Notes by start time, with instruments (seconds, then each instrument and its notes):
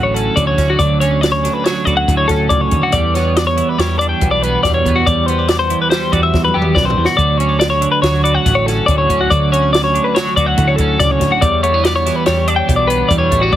Already playing: picked electric bass A1, clean electric guitar D2 A2 D3 F#3 C#4 F#4
0.03 clean electric guitar C#5
0.14 clean electric guitar C#4 A4, closed hi-hat
0.36 clean electric guitar D2 F#3 D5, picked electric bass D2, kick, closed hi-hat
0.47 clean electric guitar C#5
0.58 picked electric bass D2, clean electric guitar C#4, kick, snare, closed hi-hat
0.70 clean electric guitar F#4
0.79 picked electric bass D2, clean electric guitar D2 F#3 D5, kick, closed hi-hat
1.00 clean electric guitar C#4 C#5, closed hi-hat
1.21 clean electric guitar D5, snare, closed hi-hat
1.32 clean electric guitar C#5
1.44 clean electric guitar D3, snare, closed hi-hat
1.54 clean electric guitar B4
1.64 clean electric guitar F#3 C#5, snare, closed hi-hat
1.85 picked electric bass D2, clean electric guitar F#4 D5, kick, closed hi-hat
1.97 clean electric guitar F#5
2.08 picked electric bass D2, clean electric guitar A2, kick, closed hi-hat
2.17 clean electric guitar C#5
2.28 picked electric bass D2, clean electric guitar C#4 A4, kick, snare, closed hi-hat
2.49 picked electric bass C#2, clean electric guitar D5, kick, closed hi-hat
2.61 clean electric guitar C#5
2.71 clean electric guitar D2, picked electric bass D#2, kick, closed hi-hat
2.83 clean electric guitar F#4
2.92 picked electric bass E2, clean electric guitar E2 G3 D5, kick, closed hi-hat
3.14 clean electric guitar B3 C#5, snare, closed hi-hat
3.36 clean electric guitar D5, snare, closed hi-hat
3.47 clean electric guitar C#5
3.57 clean electric guitar E3, closed hi-hat
3.69 clean electric guitar B4
3.79 picked electric bass E2, clean electric guitar G3 C#5, snare, closed hi-hat
3.99 clean electric guitar D4 D5, closed hi-hat
4.09 clean electric guitar G5
4.21 picked electric bass B1, clean electric guitar B2, kick, closed hi-hat
4.31 clean electric guitar D5
4.43 clean electric guitar B3 B4, closed hi-hat
4.63 picked electric bass E2, clean electric guitar E2 G3 D5, kick, snare, closed hi-hat
4.74 clean electric guitar C#5
4.85 picked electric bass E2, clean electric guitar B3, kick, closed hi-hat
4.96 clean electric guitar F#4
5.06 picked electric bass E2, clean electric guitar E2 G3 D5, kick, closed hi-hat
5.26 clean electric guitar B3 C5, closed hi-hat
5.48 clean electric guitar D5, snare, closed hi-hat
5.59 clean electric guitar C5
5.70 clean electric guitar E3, closed hi-hat
5.82 clean electric guitar B4
5.90 clean electric guitar G3 C5, snare, closed hi-hat
6.12 picked electric bass E2, clean electric guitar F#4 D5, kick, closed hi-hat
6.23 clean electric guitar E5
6.34 clean electric guitar E2, picked electric bass E2, kick, snare
6.44 clean electric guitar B4, high tom
6.54 picked electric bass E2, clean electric guitar B3 G4
6.62 mid tom
6.75 picked electric bass B1, clean electric guitar F#2 D5, kick, snare
6.85 clean electric guitar C5
6.90 floor tom
6.97 picked electric bass E2, clean electric guitar E2
7.05 clean electric guitar F#4, snare
7.17 clean electric guitar D2 F#3 D5, picked electric bass D2, kick, closed hi-hat
7.38 clean electric guitar C#4 C#5, closed hi-hat
7.60 clean electric guitar D5, snare, closed hi-hat
7.70 clean electric guitar C#5
7.81 clean electric guitar D3, closed hi-hat
7.92 clean electric guitar B4
8.02 picked electric bass D2, clean electric guitar F#3 C#5, snare, closed hi-hat
8.24 clean electric guitar F#4 D5, closed hi-hat
8.35 clean electric guitar F#5
8.45 picked electric bass A1, clean electric guitar A2, kick, snare, closed hi-hat
8.55 clean electric guitar C#5
8.66 clean electric guitar C#4 A4, snare, closed hi-hat
8.86 picked electric bass D2, clean electric guitar D2 D5, kick, closed hi-hat
8.90 clean electric guitar F#3
8.98 clean electric guitar C#5
9.09 picked electric bass D2, clean electric guitar C#4, kick, closed hi-hat
9.21 clean electric guitar F#4
9.30 picked electric bass D2, clean electric guitar D2 F#3 D5, kick, closed hi-hat
9.52 clean electric guitar C#4 C#5, closed hi-hat
9.73 clean electric guitar D5, snare, closed hi-hat
9.84 clean electric guitar C#5
9.95 clean electric guitar D3, closed hi-hat
10.04 clean electric guitar B4
10.15 clean electric guitar F#3 C#5, snare, closed hi-hat
10.36 picked electric bass D2, clean electric guitar F#4 D5, kick, closed hi-hat
10.46 clean electric guitar F#5
10.57 picked electric bass D2, clean electric guitar A2, kick, closed hi-hat
10.68 clean electric guitar C#5
10.76 picked electric bass D2, clean electric guitar A4, kick, closed hi-hat
10.81 clean electric guitar C#4
11.00 picked electric bass C#2, clean electric guitar D5, kick, snare, closed hi-hat
11.11 clean electric guitar C#5
11.20 clean electric guitar D2, picked electric bass D2, kick, snare, closed hi-hat
11.32 clean electric guitar F#4
11.41 clean electric guitar E2 G3 D5, picked electric bass E2, kick, closed hi-hat
11.63 clean electric guitar A3 C#5, closed hi-hat
11.74 clean electric guitar B3
11.84 clean electric guitar D5, snare, closed hi-hat
11.96 clean electric guitar C#5
12.06 clean electric guitar E3, snare, closed hi-hat
12.16 clean electric guitar B4
12.26 picked electric bass E2, clean electric guitar G3 C#5, snare, closed hi-hat
12.48 clean electric guitar D4 D5, closed hi-hat
12.56 clean electric guitar G5
12.67 picked electric bass B1, clean electric guitar B2, kick, closed hi-hat
12.76 clean electric guitar D5
12.87 clean electric guitar B3 B4, closed hi-hat
13.09 picked electric bass E2, clean electric guitar E2 G3 D5, kick, closed hi-hat
13.18 clean electric guitar C#5
13.31 picked electric bass A1, clean electric guitar A3, kick, closed hi-hat
13.42 clean electric guitar B3 F#4
13.52 clean electric guitar D2 F#3 D5, picked electric bass D2, kick, high tom